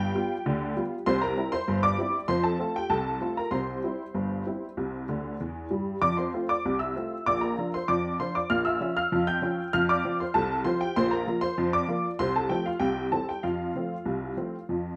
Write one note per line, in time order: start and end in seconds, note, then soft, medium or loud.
0.00 0.10 G2 medium
0.00 1.03 G4 medium
0.00 0.82 G5 loud
0.15 0.32 G3 medium
0.15 0.32 B3 medium
0.15 0.32 F4 medium
0.46 0.72 D2 medium
0.46 0.72 D3 medium
0.77 0.93 G3 medium
0.77 0.93 B3 medium
0.77 0.93 F4 medium
1.06 1.33 C2 medium
1.06 1.33 C3 medium
1.06 1.21 C5 medium
1.06 1.22 C6 loud
1.22 1.51 A#4 medium
1.22 1.51 A#5 medium
1.37 1.54 G3 soft
1.37 1.54 C4 medium
1.37 1.55 E4 medium
1.52 1.82 C5 medium
1.52 1.77 C6 loud
1.68 1.94 G1 medium
1.68 1.94 G2 medium
1.83 2.27 D5 medium
1.83 2.20 D6 loud
1.98 2.15 G3 soft
1.98 2.16 C4 soft
1.98 2.16 E4 medium
2.28 2.55 F2 medium
2.28 2.55 F3 medium
2.28 2.44 C5 medium
2.28 2.44 C6 loud
2.44 2.74 A4 medium
2.44 2.74 A5 medium
2.59 2.77 A3 medium
2.59 2.77 C4 soft
2.59 2.78 F4 medium
2.76 2.91 G4 medium
2.76 2.92 G5 medium
2.90 3.17 C2 medium
2.90 3.17 C3 medium
2.90 3.35 A4 medium
2.90 3.35 A5 medium
3.21 3.39 A3 soft
3.21 3.39 C4 soft
3.21 3.39 F4 soft
3.37 3.53 A#4 medium
3.37 3.53 A#5 medium
3.51 3.79 C2 medium
3.51 3.79 C3 medium
3.51 5.36 C5 medium
3.51 5.35 C6 medium
3.84 4.01 G3 soft
3.84 4.02 C4 soft
3.84 4.02 E4 soft
4.14 4.42 G1 medium
4.14 4.42 G2 medium
4.47 4.64 G3 soft
4.47 4.64 C4 soft
4.47 4.65 E4 soft
4.77 5.04 C2 medium
4.77 5.04 C3 medium
5.09 5.32 D2 medium
5.09 5.33 D3 medium
5.40 5.64 E2 medium
5.40 5.64 E3 medium
5.71 5.95 G2 medium
5.71 5.94 G3 medium
6.02 6.29 F2 medium
6.02 6.29 F3 medium
6.02 6.17 D5 medium
6.02 6.18 D6 medium
6.17 6.48 C5 soft
6.17 6.43 C6 medium
6.34 6.51 A3 soft
6.34 6.51 C4 soft
6.34 6.51 F4 medium
6.49 6.79 D5 medium
6.49 6.74 D6 medium
6.65 6.92 C2 medium
6.65 6.92 C3 medium
6.79 7.23 E5 medium
6.79 7.24 E6 medium
6.96 7.13 A3 soft
6.96 7.13 C4 soft
6.96 7.13 F4 medium
7.26 7.53 A#1 medium
7.26 7.53 A#2 medium
7.26 7.41 D5 medium
7.26 7.42 D6 medium
7.41 7.71 A#4 medium
7.41 7.66 A#5 medium
7.58 7.75 F3 soft
7.58 7.76 D4 soft
7.58 7.76 F4 soft
7.74 7.89 C5 medium
7.74 7.89 C6 medium
7.88 8.15 F2 medium
7.88 8.15 F3 medium
7.88 8.18 D5 medium
7.88 8.13 D6 medium
8.20 8.37 F3 soft
8.20 8.37 D4 soft
8.20 8.38 F4 medium
8.20 8.34 C5 medium
8.20 8.35 C6 medium
8.35 8.50 D5 medium
8.35 8.50 D6 medium
8.50 8.76 A#1 medium
8.50 8.76 A#2 medium
8.50 8.65 F5 medium
8.50 8.65 F6 loud
8.65 8.95 E5 medium
8.65 8.94 E6 medium
8.81 8.98 F3 soft
8.81 8.98 C#4 soft
8.81 8.98 F4 medium
8.97 9.26 F5 medium
8.97 9.21 F6 medium
9.12 9.38 F2 medium
9.12 9.38 F3 medium
9.27 9.71 G5 medium
9.27 9.64 G6 medium
9.42 9.59 F3 soft
9.42 9.59 C#4 soft
9.42 9.59 F4 medium
9.73 10.00 F2 medium
9.73 10.00 F3 medium
9.73 9.88 F5 medium
9.73 9.89 F6 loud
9.89 10.18 D5 medium
9.89 10.14 D6 medium
10.04 10.21 F3 medium
10.04 10.22 C4 soft
10.04 10.22 F4 medium
10.20 10.35 C5 medium
10.20 10.35 C6 medium
10.34 10.61 C2 medium
10.34 10.61 C3 medium
10.34 10.64 A4 medium
10.34 10.59 A5 medium
10.64 10.82 F3 soft
10.64 10.82 C4 soft
10.64 10.83 F4 medium
10.64 10.80 C5 medium
10.64 10.80 C6 medium
10.81 10.96 G4 medium
10.81 10.96 G5 medium
10.96 11.23 A#1 medium
10.96 11.23 A#2 medium
10.96 11.11 C5 medium
10.96 11.12 C6 loud
11.11 11.40 A#4 medium
11.11 11.36 A#5 medium
11.27 11.44 F3 medium
11.27 11.44 A#3 medium
11.27 11.45 F4 medium
11.41 11.71 C5 medium
11.41 11.71 C6 medium
11.58 11.84 F2 medium
11.58 11.84 F3 medium
11.73 12.17 D5 medium
11.73 12.10 D6 medium
11.88 12.05 F3 soft
11.88 12.06 A#3 soft
11.88 12.06 F4 medium
12.19 12.46 C2 medium
12.19 12.46 C3 medium
12.19 12.34 C5 medium
12.19 12.35 C6 loud
12.36 12.50 A4 medium
12.36 12.51 A5 medium
12.49 12.67 F3 medium
12.49 12.67 A3 soft
12.49 12.68 C4 medium
12.49 12.65 G4 medium
12.49 12.65 G5 medium
12.66 12.81 F4 medium
12.66 12.81 F5 medium
12.80 13.07 C2 medium
12.80 13.07 C3 medium
12.80 13.10 G4 medium
12.80 13.05 G5 medium
13.12 13.29 E3 soft
13.12 13.29 G3 soft
13.12 13.30 C4 soft
13.12 13.27 A4 medium
13.12 13.28 A5 medium
13.29 13.43 G4 medium
13.29 13.44 G5 medium
13.43 13.70 F2 medium
13.43 13.70 F3 medium
13.43 14.96 F4 medium
13.43 14.93 F5 medium
13.76 13.92 F3 soft
13.76 13.93 A3 soft
13.76 13.93 C4 soft
14.06 14.32 C2 medium
14.06 14.32 C3 medium
14.37 14.54 F3 soft
14.37 14.55 A3 soft
14.37 14.55 C4 soft
14.69 14.96 F2 medium
14.69 14.95 F3 medium